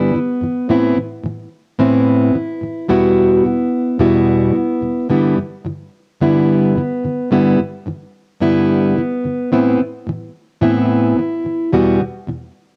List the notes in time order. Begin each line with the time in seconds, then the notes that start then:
Already playing: G2 D3 E3 G3 B3 E4
0.14 G2 D3 E3
0.41 G2 D3 E3
0.69 A2 E3 B3 C4 E4
0.96 A2 E3
1.24 A2 E3
1.79 A2 E3 B3 C4 E4
2.33 A2 E3
2.61 A2 E3
2.88 E2 B2 G3 B3 E4 F#4
3.44 E2 B2 G3
3.99 E2 B2 G3 B3 E4 F#4
4.54 E2 B2 G3
4.81 E2 B2 G3
5.09 G2 D3 E3 G3 B3 E4
5.37 G2 D3 E3
5.65 G2 D3 E3
6.21 G2 D3 E3 G3 B3 E4
6.76 G2 D3 E3
7.03 G2 D3 E3
7.31 G2 D3 E3 G3 B3 E4
7.58 G2 D3 E3
7.86 G2 D3 E3
8.40 G2 D3 E3 G3 B3 E4
8.96 G2 D3 E3
9.24 G2 D3 E3
9.52 A2 E3 B3 C4 E4
9.79 A2 E3
10.07 A2 E3
10.61 A2 E3 B3 C4 E4
11.16 A2 E3
11.44 A2 E3
11.72 E2 B2 E3 G3 B3 F#4
12.00 E2 B2 E3
12.27 E2 B2 E3